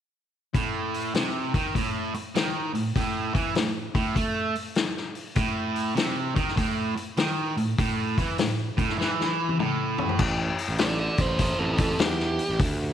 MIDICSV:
0, 0, Header, 1, 6, 480
1, 0, Start_track
1, 0, Tempo, 602410
1, 435, Time_signature, 4, 2, 24, 8
1, 10303, End_track
2, 0, Start_track
2, 0, Title_t, "Lead electric guitar"
2, 0, Program_c, 0, 29
2, 8603, Note_on_c, 0, 69, 76
2, 8608, Note_on_c, 0, 74, 86
2, 8750, Note_off_c, 0, 69, 0
2, 8755, Note_off_c, 0, 74, 0
2, 8760, Note_on_c, 0, 69, 70
2, 8765, Note_on_c, 0, 74, 84
2, 8924, Note_off_c, 0, 69, 0
2, 8924, Note_on_c, 0, 64, 73
2, 8930, Note_off_c, 0, 74, 0
2, 8930, Note_on_c, 0, 72, 70
2, 9076, Note_off_c, 0, 64, 0
2, 9079, Note_off_c, 0, 72, 0
2, 9085, Note_on_c, 0, 64, 73
2, 9092, Note_on_c, 0, 72, 78
2, 9231, Note_off_c, 0, 64, 0
2, 9234, Note_on_c, 0, 60, 70
2, 9238, Note_off_c, 0, 72, 0
2, 9238, Note_on_c, 0, 69, 85
2, 9387, Note_off_c, 0, 60, 0
2, 9393, Note_off_c, 0, 69, 0
2, 9397, Note_on_c, 0, 60, 64
2, 9404, Note_on_c, 0, 69, 69
2, 9546, Note_off_c, 0, 60, 0
2, 9558, Note_off_c, 0, 69, 0
2, 9558, Note_on_c, 0, 67, 79
2, 10021, Note_off_c, 0, 67, 0
2, 10303, End_track
3, 0, Start_track
3, 0, Title_t, "Distorted electric guitar"
3, 0, Program_c, 1, 30
3, 432, Note_on_c, 1, 45, 89
3, 908, Note_off_c, 1, 45, 0
3, 914, Note_on_c, 1, 48, 80
3, 1218, Note_off_c, 1, 48, 0
3, 1230, Note_on_c, 1, 51, 84
3, 1390, Note_off_c, 1, 51, 0
3, 1401, Note_on_c, 1, 45, 73
3, 1701, Note_off_c, 1, 45, 0
3, 1874, Note_on_c, 1, 51, 80
3, 2177, Note_off_c, 1, 51, 0
3, 2182, Note_on_c, 1, 45, 57
3, 2318, Note_off_c, 1, 45, 0
3, 2355, Note_on_c, 1, 45, 92
3, 2658, Note_off_c, 1, 45, 0
3, 2662, Note_on_c, 1, 52, 78
3, 2826, Note_off_c, 1, 52, 0
3, 2836, Note_on_c, 1, 45, 59
3, 3086, Note_off_c, 1, 45, 0
3, 3144, Note_on_c, 1, 45, 83
3, 3307, Note_off_c, 1, 45, 0
3, 3307, Note_on_c, 1, 57, 76
3, 3614, Note_off_c, 1, 57, 0
3, 4271, Note_on_c, 1, 45, 93
3, 4742, Note_off_c, 1, 45, 0
3, 4745, Note_on_c, 1, 48, 85
3, 5055, Note_off_c, 1, 48, 0
3, 5062, Note_on_c, 1, 51, 90
3, 5225, Note_off_c, 1, 51, 0
3, 5228, Note_on_c, 1, 45, 90
3, 5534, Note_off_c, 1, 45, 0
3, 5717, Note_on_c, 1, 51, 85
3, 6022, Note_off_c, 1, 51, 0
3, 6034, Note_on_c, 1, 45, 62
3, 6167, Note_off_c, 1, 45, 0
3, 6205, Note_on_c, 1, 45, 91
3, 6507, Note_off_c, 1, 45, 0
3, 6522, Note_on_c, 1, 52, 79
3, 6680, Note_off_c, 1, 52, 0
3, 6683, Note_on_c, 1, 45, 65
3, 6933, Note_off_c, 1, 45, 0
3, 6990, Note_on_c, 1, 45, 84
3, 7154, Note_off_c, 1, 45, 0
3, 7161, Note_on_c, 1, 52, 93
3, 7636, Note_off_c, 1, 52, 0
3, 7646, Note_on_c, 1, 45, 77
3, 8119, Note_off_c, 1, 45, 0
3, 10303, End_track
4, 0, Start_track
4, 0, Title_t, "Picked electric bass"
4, 0, Program_c, 2, 34
4, 8124, Note_on_c, 2, 33, 95
4, 8365, Note_off_c, 2, 33, 0
4, 8514, Note_on_c, 2, 33, 79
4, 8821, Note_off_c, 2, 33, 0
4, 8911, Note_on_c, 2, 33, 84
4, 9161, Note_off_c, 2, 33, 0
4, 9234, Note_on_c, 2, 33, 89
4, 9484, Note_off_c, 2, 33, 0
4, 9560, Note_on_c, 2, 40, 82
4, 9864, Note_off_c, 2, 40, 0
4, 9957, Note_on_c, 2, 33, 79
4, 10019, Note_off_c, 2, 33, 0
4, 10036, Note_on_c, 2, 38, 100
4, 10277, Note_off_c, 2, 38, 0
4, 10303, End_track
5, 0, Start_track
5, 0, Title_t, "Muted distorted electric guitar strokes"
5, 1711, Note_on_c, 9, 29, 47
5, 1790, Note_off_c, 9, 29, 0
5, 5543, Note_on_c, 9, 29, 48
5, 5623, Note_off_c, 9, 29, 0
5, 10303, End_track
6, 0, Start_track
6, 0, Title_t, "Drums"
6, 433, Note_on_c, 9, 46, 54
6, 434, Note_on_c, 9, 36, 91
6, 512, Note_off_c, 9, 46, 0
6, 514, Note_off_c, 9, 36, 0
6, 750, Note_on_c, 9, 46, 44
6, 830, Note_off_c, 9, 46, 0
6, 912, Note_on_c, 9, 46, 58
6, 920, Note_on_c, 9, 38, 89
6, 991, Note_off_c, 9, 46, 0
6, 1000, Note_off_c, 9, 38, 0
6, 1229, Note_on_c, 9, 36, 90
6, 1231, Note_on_c, 9, 46, 47
6, 1309, Note_off_c, 9, 36, 0
6, 1310, Note_off_c, 9, 46, 0
6, 1396, Note_on_c, 9, 36, 83
6, 1398, Note_on_c, 9, 46, 63
6, 1476, Note_off_c, 9, 36, 0
6, 1478, Note_off_c, 9, 46, 0
6, 1707, Note_on_c, 9, 46, 44
6, 1787, Note_off_c, 9, 46, 0
6, 1875, Note_on_c, 9, 46, 55
6, 1884, Note_on_c, 9, 38, 94
6, 1954, Note_off_c, 9, 46, 0
6, 1963, Note_off_c, 9, 38, 0
6, 2189, Note_on_c, 9, 46, 47
6, 2269, Note_off_c, 9, 46, 0
6, 2356, Note_on_c, 9, 36, 89
6, 2358, Note_on_c, 9, 46, 60
6, 2436, Note_off_c, 9, 36, 0
6, 2438, Note_off_c, 9, 46, 0
6, 2668, Note_on_c, 9, 36, 85
6, 2668, Note_on_c, 9, 46, 42
6, 2748, Note_off_c, 9, 36, 0
6, 2748, Note_off_c, 9, 46, 0
6, 2830, Note_on_c, 9, 46, 56
6, 2838, Note_on_c, 9, 38, 90
6, 2909, Note_off_c, 9, 46, 0
6, 2918, Note_off_c, 9, 38, 0
6, 3144, Note_on_c, 9, 46, 42
6, 3146, Note_on_c, 9, 36, 94
6, 3223, Note_off_c, 9, 46, 0
6, 3226, Note_off_c, 9, 36, 0
6, 3314, Note_on_c, 9, 36, 85
6, 3315, Note_on_c, 9, 46, 54
6, 3393, Note_off_c, 9, 36, 0
6, 3395, Note_off_c, 9, 46, 0
6, 3628, Note_on_c, 9, 46, 40
6, 3708, Note_off_c, 9, 46, 0
6, 3787, Note_on_c, 9, 46, 55
6, 3796, Note_on_c, 9, 38, 94
6, 3867, Note_off_c, 9, 46, 0
6, 3875, Note_off_c, 9, 38, 0
6, 3959, Note_on_c, 9, 38, 29
6, 4038, Note_off_c, 9, 38, 0
6, 4103, Note_on_c, 9, 46, 40
6, 4182, Note_off_c, 9, 46, 0
6, 4266, Note_on_c, 9, 46, 60
6, 4274, Note_on_c, 9, 36, 86
6, 4346, Note_off_c, 9, 46, 0
6, 4353, Note_off_c, 9, 36, 0
6, 4587, Note_on_c, 9, 46, 42
6, 4666, Note_off_c, 9, 46, 0
6, 4755, Note_on_c, 9, 46, 60
6, 4764, Note_on_c, 9, 38, 93
6, 4835, Note_off_c, 9, 46, 0
6, 4843, Note_off_c, 9, 38, 0
6, 5071, Note_on_c, 9, 36, 96
6, 5073, Note_on_c, 9, 46, 42
6, 5150, Note_off_c, 9, 36, 0
6, 5153, Note_off_c, 9, 46, 0
6, 5164, Note_on_c, 9, 38, 27
6, 5239, Note_on_c, 9, 36, 92
6, 5240, Note_on_c, 9, 46, 59
6, 5244, Note_off_c, 9, 38, 0
6, 5318, Note_off_c, 9, 36, 0
6, 5320, Note_off_c, 9, 46, 0
6, 5555, Note_on_c, 9, 46, 46
6, 5635, Note_off_c, 9, 46, 0
6, 5714, Note_on_c, 9, 46, 59
6, 5723, Note_on_c, 9, 38, 97
6, 5794, Note_off_c, 9, 46, 0
6, 5803, Note_off_c, 9, 38, 0
6, 6035, Note_on_c, 9, 46, 45
6, 6114, Note_off_c, 9, 46, 0
6, 6203, Note_on_c, 9, 36, 93
6, 6206, Note_on_c, 9, 46, 63
6, 6283, Note_off_c, 9, 36, 0
6, 6286, Note_off_c, 9, 46, 0
6, 6516, Note_on_c, 9, 36, 80
6, 6518, Note_on_c, 9, 46, 46
6, 6596, Note_off_c, 9, 36, 0
6, 6598, Note_off_c, 9, 46, 0
6, 6678, Note_on_c, 9, 46, 61
6, 6686, Note_on_c, 9, 38, 89
6, 6757, Note_off_c, 9, 46, 0
6, 6766, Note_off_c, 9, 38, 0
6, 6996, Note_on_c, 9, 36, 89
6, 6998, Note_on_c, 9, 46, 48
6, 7076, Note_off_c, 9, 36, 0
6, 7077, Note_off_c, 9, 46, 0
6, 7086, Note_on_c, 9, 38, 29
6, 7165, Note_off_c, 9, 38, 0
6, 7177, Note_on_c, 9, 38, 47
6, 7257, Note_off_c, 9, 38, 0
6, 7334, Note_on_c, 9, 38, 37
6, 7414, Note_off_c, 9, 38, 0
6, 7560, Note_on_c, 9, 48, 47
6, 7640, Note_off_c, 9, 48, 0
6, 7647, Note_on_c, 9, 47, 61
6, 7727, Note_off_c, 9, 47, 0
6, 7954, Note_on_c, 9, 43, 73
6, 8033, Note_off_c, 9, 43, 0
6, 8039, Note_on_c, 9, 43, 63
6, 8118, Note_on_c, 9, 49, 108
6, 8119, Note_off_c, 9, 43, 0
6, 8122, Note_on_c, 9, 36, 103
6, 8198, Note_off_c, 9, 49, 0
6, 8201, Note_off_c, 9, 36, 0
6, 8433, Note_on_c, 9, 46, 54
6, 8512, Note_off_c, 9, 46, 0
6, 8592, Note_on_c, 9, 46, 67
6, 8601, Note_on_c, 9, 38, 101
6, 8672, Note_off_c, 9, 46, 0
6, 8680, Note_off_c, 9, 38, 0
6, 8905, Note_on_c, 9, 46, 57
6, 8912, Note_on_c, 9, 36, 88
6, 8985, Note_off_c, 9, 46, 0
6, 8992, Note_off_c, 9, 36, 0
6, 9072, Note_on_c, 9, 46, 74
6, 9078, Note_on_c, 9, 36, 78
6, 9151, Note_off_c, 9, 46, 0
6, 9158, Note_off_c, 9, 36, 0
6, 9385, Note_on_c, 9, 46, 60
6, 9391, Note_on_c, 9, 36, 82
6, 9465, Note_off_c, 9, 46, 0
6, 9471, Note_off_c, 9, 36, 0
6, 9552, Note_on_c, 9, 46, 73
6, 9561, Note_on_c, 9, 38, 103
6, 9632, Note_off_c, 9, 46, 0
6, 9640, Note_off_c, 9, 38, 0
6, 9719, Note_on_c, 9, 38, 32
6, 9798, Note_off_c, 9, 38, 0
6, 9871, Note_on_c, 9, 46, 50
6, 9951, Note_off_c, 9, 46, 0
6, 10034, Note_on_c, 9, 46, 80
6, 10037, Note_on_c, 9, 36, 114
6, 10114, Note_off_c, 9, 46, 0
6, 10116, Note_off_c, 9, 36, 0
6, 10303, End_track
0, 0, End_of_file